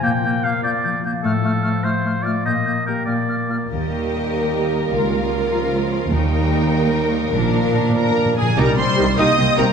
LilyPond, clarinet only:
\new Staff \with { instrumentName = "Clarinet" } { \time 6/8 \key ees \major \tempo 4. = 99 bes8 bes8 bes8 bes8 bes8 bes8 | a8 a8 a8 a8 a8 a8 | bes8 bes8 bes8 bes8 bes8 bes8 | r2. |
r2. | r2. | r2. | \key c \minor g4. bes4. | }